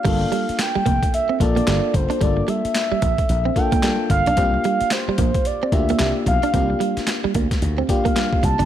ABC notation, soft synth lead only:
X:1
M:4/4
L:1/8
Q:"Swing 16ths" 1/4=111
K:Gdor
V:1 name="Soft synth lead"
f2 g2 e d2 c | d e4 g2 f- | f2 c2 d e2 f- | f2 z3 f2 a |]